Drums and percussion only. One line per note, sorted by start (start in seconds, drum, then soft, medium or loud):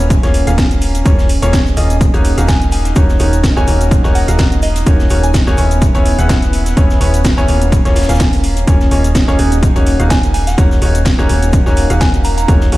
0.10 kick loud
0.10 closed hi-hat medium
0.10 shaker medium
0.23 snare soft
0.23 closed hi-hat soft
0.23 shaker soft
0.34 open hi-hat loud
0.34 shaker medium
0.47 closed hi-hat medium
0.47 shaker medium
0.58 kick loud
0.58 snare loud
0.58 closed hi-hat medium
0.58 shaker medium
0.71 closed hi-hat soft
0.71 shaker soft
0.81 open hi-hat loud
0.81 shaker medium
0.95 closed hi-hat medium
0.95 closed hi-hat soft
0.95 shaker medium
1.05 kick loud
1.05 closed hi-hat medium
1.05 shaker medium
1.19 snare medium
1.19 shaker soft
1.29 open hi-hat loud
1.29 shaker medium
1.42 closed hi-hat soft
1.42 shaker medium
1.53 kick loud
1.53 snare loud
1.53 closed hi-hat medium
1.53 shaker medium
1.53 shaker loud
1.66 snare soft
1.66 shaker soft
1.77 open hi-hat loud
1.77 shaker medium
1.90 closed hi-hat medium
1.90 shaker medium
2.01 kick loud
2.01 closed hi-hat medium
2.01 shaker medium
2.14 closed hi-hat soft
2.14 shaker soft
2.25 open hi-hat loud
2.25 shaker medium
2.38 closed hi-hat medium
2.38 shaker medium
2.48 kick loud
2.48 snare loud
2.48 closed hi-hat medium
2.48 shaker medium
2.62 closed hi-hat soft
2.62 shaker soft
2.71 open hi-hat loud
2.71 shaker medium
2.85 snare soft
2.85 closed hi-hat medium
2.85 shaker medium
2.96 kick loud
2.96 closed hi-hat medium
2.96 shaker medium
3.09 snare soft
3.09 shaker soft
3.19 open hi-hat loud
3.19 shaker medium
3.33 closed hi-hat soft
3.33 shaker medium
3.44 kick loud
3.44 snare loud
3.44 closed hi-hat medium
3.44 shaker medium
3.57 shaker soft
3.67 open hi-hat loud
3.67 shaker medium
3.81 closed hi-hat medium
3.81 shaker medium
3.91 kick loud
3.91 closed hi-hat medium
3.91 shaker medium
4.03 snare soft
4.03 shaker soft
4.15 open hi-hat loud
4.15 shaker medium
4.28 closed hi-hat medium
4.28 shaker medium
4.39 kick loud
4.39 snare loud
4.39 closed hi-hat medium
4.39 shaker medium
4.52 closed hi-hat soft
4.52 shaker soft
4.62 open hi-hat loud
4.62 shaker medium
4.76 closed hi-hat medium
4.76 closed hi-hat soft
4.76 shaker medium
4.86 kick loud
4.86 closed hi-hat medium
4.86 shaker medium
4.99 snare medium
4.99 shaker soft
5.10 open hi-hat loud
5.10 shaker medium
5.23 closed hi-hat medium
5.23 shaker medium
5.34 kick loud
5.34 snare loud
5.34 closed hi-hat medium
5.34 shaker medium
5.47 snare soft
5.47 shaker soft
5.57 open hi-hat loud
5.57 shaker medium
5.71 closed hi-hat medium
5.71 shaker medium
5.82 kick loud
5.82 closed hi-hat medium
5.82 shaker medium
5.95 closed hi-hat soft
5.95 shaker soft
6.05 open hi-hat loud
6.05 shaker medium
6.19 closed hi-hat medium
6.19 shaker medium
6.29 kick loud
6.29 snare loud
6.29 closed hi-hat medium
6.29 shaker medium
6.42 closed hi-hat soft
6.42 shaker soft
6.53 open hi-hat loud
6.53 shaker medium
6.66 snare soft
6.66 closed hi-hat medium
6.66 shaker medium
6.77 kick loud
6.77 closed hi-hat medium
6.77 shaker medium
6.90 snare soft
6.90 shaker soft
7.01 open hi-hat loud
7.01 shaker medium
7.14 closed hi-hat medium
7.14 shaker medium
7.24 kick loud
7.24 snare loud
7.24 closed hi-hat medium
7.24 shaker medium
7.38 shaker soft
7.48 open hi-hat loud
7.48 shaker medium
7.62 closed hi-hat medium
7.62 shaker medium
7.72 kick loud
7.72 closed hi-hat medium
7.72 shaker medium
7.85 snare soft
7.85 closed hi-hat soft
7.85 shaker soft
7.96 snare medium
7.96 open hi-hat loud
7.96 shaker medium
8.02 snare medium
8.02 shaker medium
8.09 snare medium
8.09 closed hi-hat medium
8.09 shaker medium
8.14 snare medium
8.14 shaker medium
8.19 kick loud
8.19 snare loud
8.19 closed hi-hat medium
8.19 shaker medium
8.33 open hi-hat medium
8.33 shaker soft
8.44 open hi-hat loud
8.44 shaker medium
8.57 closed hi-hat medium
8.57 closed hi-hat soft
8.57 shaker medium
8.67 kick loud
8.67 closed hi-hat medium
8.67 shaker medium
8.80 snare medium
8.80 shaker soft
8.91 open hi-hat loud
8.91 shaker medium
9.04 closed hi-hat medium
9.04 shaker medium
9.15 kick loud
9.15 snare loud
9.15 closed hi-hat medium
9.15 shaker medium
9.28 snare soft
9.28 shaker soft
9.39 open hi-hat loud
9.39 shaker medium
9.52 closed hi-hat medium
9.52 shaker medium
9.63 kick loud
9.63 closed hi-hat medium
9.63 shaker medium
9.76 closed hi-hat soft
9.76 shaker soft
9.86 open hi-hat loud
9.86 shaker medium
10.00 closed hi-hat medium
10.00 shaker medium
10.10 kick loud
10.10 snare loud
10.10 closed hi-hat medium
10.10 shaker medium
10.23 closed hi-hat soft
10.23 shaker soft
10.34 open hi-hat loud
10.34 shaker medium
10.47 snare soft
10.47 closed hi-hat medium
10.47 shaker medium
10.58 kick loud
10.58 closed hi-hat medium
10.58 shaker medium
10.71 snare soft
10.71 shaker soft
10.82 open hi-hat loud
10.82 shaker medium
10.95 closed hi-hat medium
10.95 shaker medium
11.05 kick loud
11.05 snare loud
11.05 closed hi-hat medium
11.05 shaker medium
11.19 shaker soft
11.29 open hi-hat loud
11.29 shaker medium
11.42 closed hi-hat medium
11.42 shaker medium
11.53 kick loud
11.53 closed hi-hat medium
11.53 shaker medium
11.66 snare soft
11.66 shaker soft
11.76 open hi-hat loud
11.76 shaker medium
11.90 closed hi-hat medium
11.90 shaker medium
12.01 kick loud
12.01 snare loud
12.01 closed hi-hat medium
12.01 shaker medium
12.14 closed hi-hat soft
12.14 shaker soft
12.24 open hi-hat loud
12.24 shaker medium
12.37 closed hi-hat soft
12.37 closed hi-hat medium
12.37 shaker medium
12.48 kick loud
12.48 closed hi-hat medium
12.48 shaker medium
12.61 snare medium
12.61 shaker soft
12.72 open hi-hat loud
12.72 shaker medium